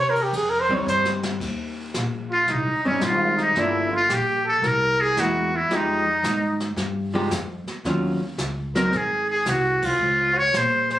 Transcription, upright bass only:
0.00 0.31 C3 medium
0.32 0.85 F2 medium
0.86 1.39 G2 medium
1.40 1.93 D#2 medium
1.95 2.47 A#1 medium
2.49 2.69 C2 medium
2.67 2.84 G#1 medium
2.85 3.01 G1 medium
3.02 3.54 G#1 medium
3.56 4.08 G1 medium
4.09 4.61 A#1 medium
4.62 5.15 C2 medium
5.16 5.68 E2 medium
5.69 6.22 F2 medium
6.23 6.76 G#2 medium
6.76 7.30 G2 medium
7.30 7.65 F2 medium
7.67 muted upright bass stroke soft
7.84 8.37 D#2 medium
8.38 8.91 C#2 medium
8.92 9.45 G#1 medium
9.46 9.98 C2 medium
10.00 10.52 C#2 medium
10.53 10.99 A#1 medium

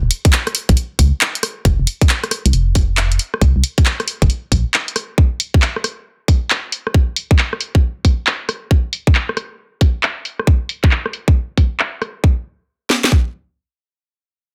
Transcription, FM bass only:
0.03 0.10 D#1 medium
0.69 0.76 A#1 medium
0.99 1.12 C#2 medium
1.65 1.78 F1 loud
1.79 1.86 F1 medium
2.46 2.52 C2 medium
2.53 3.18 F1 medium
3.41 3.54 C2 loud
3.56 3.63 C2 medium
4.22 4.29 G1 medium
4.52 4.64 A#1 medium

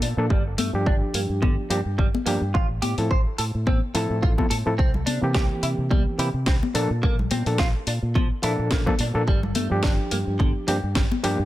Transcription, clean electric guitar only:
0.03 0.07 D4 medium
0.31 0.42 G3 medium
0.58 0.70 A3 medium
0.87 0.94 D4 medium
1.15 1.19 A#3 medium
1.42 1.54 D3 medium
1.70 1.78 C4 medium
1.98 2.06 G3 medium
2.26 2.31 A#3 medium
2.54 2.66 F4 medium
2.82 2.94 G4 medium
3.11 3.18 C5 medium
3.38 3.43 A4 medium
3.67 3.78 C4 medium
3.95 4.03 A4 medium
4.22 4.30 F4 medium
4.50 4.55 A4 medium
4.78 4.90 C4 medium
5.06 5.18 D4 medium
5.35 5.42 G4 loud
5.63 5.68 E4 medium
5.91 6.02 G3 medium
6.19 6.27 E4 medium
6.47 6.55 C4 medium
6.75 6.80 D4 medium
7.03 7.15 A#3 loud
7.31 7.43 C4 medium
7.59 7.67 F4 loud
7.88 7.92 D4 medium
8.16 8.27 F3 medium
8.44 8.51 E4 medium
8.72 8.80 A#3 medium
9.01 9.05 D4 medium
9.28 9.39 G3 loud
9.55 9.67 A3 medium
9.83 9.91 D4 loud
10.12 10.16 A#3 medium
10.39 10.51 D3 medium
10.68 10.76 C4 medium
10.96 11.04 G3 medium
11.24 11.28 A#3 medium

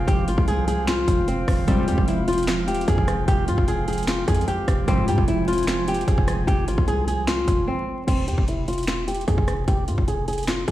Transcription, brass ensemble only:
0.00 4.84 F4 medium
0.00 4.84 C5 medium
0.00 4.84 F5 medium
0.00 1.64 G5 medium
1.68 8.04 G5 medium
4.88 8.05 F4 medium
4.88 8.05 C5 medium
4.88 8.05 G#5 loud

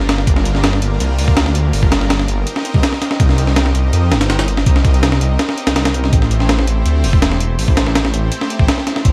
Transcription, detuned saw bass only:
0.00 0.26 G1 medium
0.27 0.81 G1 loud
0.82 0.98 G1 medium
1.00 1.20 C2 loud
1.19 1.72 D2 loud
1.73 2.27 G1 loud
2.28 2.45 G1 medium
2.74 2.82 C2 loud
3.20 3.73 C2 loud
3.75 3.91 C2 medium
3.93 4.13 F2 loud
4.11 4.65 G1 loud
4.66 5.20 C2 loud
5.21 5.38 C2 medium
5.67 5.75 C2 loud
5.76 6.11 C2 loud
6.13 6.66 A1 loud
6.67 6.84 A1 medium
6.86 7.05 D2 loud
7.04 7.57 E1 loud
7.59 8.12 A1 loud
8.14 8.30 A1 medium
8.59 8.68 A1 loud
9.05 9.13 A1 loud

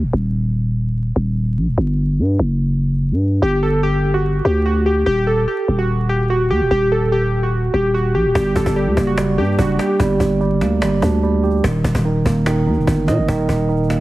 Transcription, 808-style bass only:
0.03 0.13 D#1 loud
0.13 1.12 D#1 loud
1.16 1.59 D#1 loud
1.57 1.69 A#1 loud
1.67 1.77 D#1 loud
1.78 2.20 G1 loud
2.19 2.38 G2 loud
2.39 3.13 F#1 loud
3.11 3.41 G2 loud
3.42 4.41 G1 loud
4.45 5.04 D2 loud
5.07 5.46 D#1 loud
5.68 6.52 D#1 loud
6.50 6.62 D#2 loud
6.61 6.70 D#1 loud
6.71 7.70 D#1 loud
7.74 8.16 D#1 loud
8.15 8.26 A#1 loud
8.25 8.35 D#1 loud
8.35 8.55 G1 loud
8.56 8.66 G1 loud
8.66 8.88 G1 loud
8.87 8.96 D2 loud
8.97 9.40 F#1 loud
9.38 9.58 G2 loud
9.59 9.78 F#1 loud
10.00 10.19 G1 loud
10.20 10.63 G1 loud
10.61 10.83 D2 loud
10.82 11.01 G1 loud
11.02 11.62 D2 loud
11.64 11.84 D#1 loud
11.84 11.94 D#1 loud
11.95 12.24 D#1 loud
12.26 12.68 D#1 loud
12.67 12.78 D#2 loud
12.77 12.87 D#1 loud
12.87 13.09 G1 loud
13.08 13.20 A#2 loud
13.18 13.28 G1 loud
13.28 13.48 D#1 loud
13.49 14.00 D#1 loud

